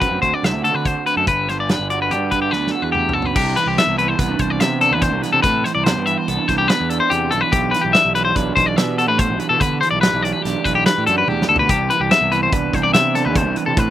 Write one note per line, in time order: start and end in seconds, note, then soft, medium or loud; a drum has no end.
0.00 0.82 D2 medium
0.00 0.21 D3 medium
0.00 1.25 C4 medium
0.00 0.61 F#4 medium
0.00 0.21 B4 medium
0.00 kick medium
0.00 closed hi-hat medium
0.11 0.21 F#2 medium
0.22 0.32 D2 medium
0.22 1.04 D3 medium
0.22 0.34 C5 medium
0.22 kick medium
0.22 closed hi-hat medium
0.34 0.44 D5 medium
0.43 0.52 C2 medium
0.43 1.25 A3 medium
0.43 0.64 E5 medium
0.43 snare medium
0.43 closed hi-hat medium
0.53 0.63 D2 medium
0.62 0.73 D3 medium
0.62 1.23 F#4 medium
0.62 0.74 A4 medium
0.62 closed hi-hat medium
0.74 0.94 D3 medium
0.74 0.86 B4 medium
0.83 1.26 D2 medium
0.83 1.06 C5 medium
0.83 kick medium
0.83 closed hi-hat medium
1.05 1.47 D3 medium
1.05 1.17 B4 medium
1.05 closed hi-hat soft
1.16 1.26 F#2 medium
1.16 1.27 A4 medium
1.26 1.75 G1 medium
1.26 2.93 G2 medium
1.26 1.49 B4 medium
1.26 kick loud
1.26 closed hi-hat medium
1.48 2.31 D3 medium
1.48 1.59 C5 medium
1.48 snare soft
1.48 closed hi-hat medium
1.60 1.70 D5 medium
1.69 2.11 D4 medium
1.69 1.90 B4 medium
1.69 snare medium
1.69 closed hi-hat medium
1.79 2.12 G1 medium
1.90 2.73 F#4 medium
1.90 2.00 D5 medium
1.90 closed hi-hat medium
2.02 2.11 B4 medium
2.10 2.51 G2 medium
2.10 3.34 D4 medium
2.10 2.32 G4 medium
2.10 closed hi-hat medium
2.31 3.55 D3 medium
2.31 2.41 B4 medium
2.31 kick medium
2.31 closed hi-hat medium
2.42 2.51 G4 medium
2.51 2.71 D2 medium
2.51 3.34 B3 soft
2.51 2.71 B4 medium
2.51 snare soft
2.67 snare soft
2.71 3.34 F#4 medium
2.71 2.82 A4 medium
2.82 3.11 E2 medium
2.82 2.92 B4 medium
2.92 3.14 A2 soft
2.92 3.13 G4 medium
2.92 mid tom medium
3.09 floor tom medium
3.13 3.33 F#1 medium
3.13 3.33 B2 soft
3.13 3.26 A4 medium
3.22 3.36 B4 medium
3.22 floor tom medium
3.34 3.55 C2 medium
3.34 3.56 C3 medium
3.34 3.57 G4 medium
3.34 kick loud
3.34 crash loud
3.55 3.97 E3 medium
3.55 3.67 B4 medium
3.55 closed hi-hat medium
3.66 3.76 C2 medium
3.66 3.78 G4 medium
3.75 4.19 B3 medium
3.75 3.98 E5 medium
3.75 snare loud
3.75 closed hi-hat medium
3.87 4.16 C2 medium
3.98 4.39 E3 medium
3.98 4.08 B4 medium
3.98 closed hi-hat medium
4.08 4.19 C5 medium
4.19 4.38 C2 medium
4.19 4.29 B3 medium
4.19 4.40 B4 medium
4.19 kick medium
4.19 snare soft
4.19 closed hi-hat medium
4.29 4.80 D4 soft
4.39 4.59 C2 medium
4.39 5.22 E3 medium
4.39 4.50 C5 medium
4.39 kick medium
4.39 closed hi-hat medium
4.50 4.60 D5 medium
4.60 4.93 C3 medium
4.60 5.47 B3 medium
4.60 4.81 E5 medium
4.60 snare medium
4.60 closed hi-hat medium
4.81 5.47 D4 medium
4.81 4.93 A4 medium
4.81 snare soft
4.81 closed hi-hat medium
4.91 5.13 E2 medium
4.91 5.02 B4 medium
5.02 5.23 C3 medium
5.02 5.22 C5 medium
5.02 kick loud
5.02 snare soft
5.02 closed hi-hat medium
5.13 5.22 C2 medium
5.22 5.64 E3 medium
5.22 5.32 B4 medium
5.22 snare soft
5.22 closed hi-hat medium
5.33 5.43 C3 medium
5.33 5.42 A4 medium
5.42 5.63 A2 medium
5.42 5.65 C3 medium
5.42 5.64 B4 medium
5.42 kick loud
5.42 closed hi-hat loud
5.64 6.06 E3 medium
5.64 5.74 C5 medium
5.64 snare soft
5.64 closed hi-hat medium
5.75 5.94 C2 medium
5.75 5.84 D5 medium
5.84 6.28 B3 medium
5.84 6.06 C5 medium
5.84 snare loud
5.84 closed hi-hat medium
5.96 6.15 G2 medium
6.06 6.48 E3 medium
6.06 6.18 E5 medium
6.06 closed hi-hat medium
6.18 6.28 C5 medium
6.28 6.37 C2 medium
6.28 6.37 B3 medium
6.28 6.48 A4 medium
6.28 closed hi-hat medium
6.37 6.88 D4 soft
6.48 6.68 C2 medium
6.48 7.31 E3 medium
6.48 6.58 C5 medium
6.48 kick medium
6.48 snare soft
6.48 closed hi-hat medium
6.58 6.68 G4 medium
6.67 7.94 B3 medium
6.67 6.90 B4 medium
6.67 snare loud
6.67 closed hi-hat medium
6.80 6.99 E2 medium
6.90 7.77 D4 medium
6.90 7.00 A4 medium
6.90 closed hi-hat medium
7.00 7.11 C5 medium
7.09 7.30 E2 medium
7.09 7.31 C3 medium
7.09 7.31 G4 medium
7.09 closed hi-hat medium
7.31 7.42 B1 medium
7.31 7.73 E3 medium
7.31 7.41 A4 medium
7.31 closed hi-hat medium
7.41 7.52 B4 medium
7.52 7.72 B1 medium
7.52 7.74 B2 medium
7.52 7.73 G4 medium
7.52 kick loud
7.52 closed hi-hat medium
7.71 8.14 E3 medium
7.71 7.83 B4 medium
7.71 snare soft
7.71 closed hi-hat medium
7.81 7.94 B1 medium
7.81 7.93 G4 medium
7.93 8.78 G3 medium
7.93 8.15 E5 medium
7.93 snare loud
7.93 closed hi-hat medium
8.05 8.33 B1 medium
8.14 8.55 E3 medium
8.14 8.24 B4 medium
8.14 closed hi-hat medium
8.25 8.36 C5 medium
8.36 8.55 B1 medium
8.36 8.97 D4 medium
8.36 8.55 B4 medium
8.36 kick loud
8.36 closed hi-hat medium
8.55 8.76 B1 medium
8.55 9.39 E3 medium
8.55 8.66 C5 medium
8.55 kick medium
8.55 closed hi-hat medium
8.66 8.76 D5 medium
8.76 9.09 B2 medium
8.76 10.03 G3 medium
8.76 8.98 E5 medium
8.76 snare medium
8.76 closed hi-hat medium
8.97 9.06 B3 medium
8.97 9.08 A4 medium
8.97 closed hi-hat medium
9.06 9.31 A2 medium
9.06 9.60 D4 soft
9.06 9.19 B4 medium
9.17 9.39 B2 medium
9.17 9.39 C5 medium
9.17 kick loud
9.17 closed hi-hat medium
9.29 9.39 B1 medium
9.39 9.81 E3 medium
9.39 9.49 B4 medium
9.39 closed hi-hat medium
9.49 9.60 B2 medium
9.49 9.60 A4 medium
9.60 9.81 B2 medium
9.60 9.80 D3 medium
9.60 9.80 B4 medium
9.60 kick loud
9.60 closed hi-hat loud
9.81 10.21 E3 medium
9.81 9.90 C5 medium
9.81 closed hi-hat medium
9.91 10.11 B1 medium
9.91 10.01 D5 medium
10.01 10.87 G3 medium
10.01 10.23 B4 medium
10.01 snare loud
10.01 closed hi-hat medium
10.13 10.32 B1 medium
10.21 10.66 E3 medium
10.21 10.33 D5 medium
10.21 closed hi-hat medium
10.33 10.42 B4 medium
10.42 10.54 B1 medium
10.42 11.08 D4 medium
10.42 10.64 G4 medium
10.42 snare soft
10.42 closed hi-hat medium
10.64 10.84 B1 medium
10.64 11.91 E3 medium
10.64 10.75 B4 medium
10.64 kick medium
10.64 closed hi-hat medium
10.75 10.86 G4 medium
10.86 12.11 G3 medium
10.86 11.06 B4 medium
10.86 snare loud
10.86 closed hi-hat medium
10.98 11.07 A2 medium
11.06 11.26 F#2 medium
11.06 11.74 D4 medium
11.06 11.17 A4 medium
11.06 closed hi-hat medium
11.18 11.28 B4 medium
11.28 11.46 E2 medium
11.28 11.50 A2 medium
11.28 11.48 G4 medium
11.28 high tom medium
11.42 snare medium
11.49 11.67 D2 medium
11.49 11.70 B2 medium
11.49 11.59 A4 medium
11.56 11.70 B4 medium
11.56 floor tom medium
11.69 11.88 C2 medium
11.69 11.91 C3 medium
11.69 11.90 G4 medium
11.69 kick loud
11.69 closed hi-hat medium
11.90 12.31 E3 medium
11.90 12.00 B4 medium
11.90 closed hi-hat medium
12.00 12.10 C2 medium
12.00 12.11 G4 medium
12.11 12.92 B3 medium
12.11 12.32 E5 medium
12.11 snare loud
12.11 closed hi-hat medium
12.21 12.50 C2 medium
12.32 12.73 E3 medium
12.32 12.42 B4 medium
12.32 closed hi-hat medium
12.43 12.52 C5 medium
12.52 12.72 C2 medium
12.52 13.14 D4 medium
12.52 12.74 B4 medium
12.52 kick loud
12.52 closed hi-hat medium
12.73 12.93 C2 medium
12.73 13.56 E3 medium
12.73 12.84 C5 medium
12.73 kick medium
12.73 closed hi-hat medium
12.83 12.93 D5 medium
12.92 13.27 C3 medium
12.92 13.82 B3 medium
12.92 13.15 E5 medium
12.92 snare loud
12.92 closed hi-hat loud
13.14 13.82 D4 medium
13.14 13.25 A4 medium
13.14 snare soft
13.14 closed hi-hat medium
13.25 13.46 E2 medium
13.25 13.36 B4 medium
13.35 13.57 C3 medium
13.35 13.57 C5 medium
13.35 kick loud
13.35 closed hi-hat loud
13.46 13.55 C2 medium
13.56 13.90 E3 medium
13.56 13.66 B4 medium
13.56 closed hi-hat medium
13.66 13.76 C3 medium
13.66 13.78 A4 medium
13.77 13.90 A2 medium
13.77 13.90 C3 medium
13.77 13.90 B4 medium
13.77 kick loud
13.77 closed hi-hat loud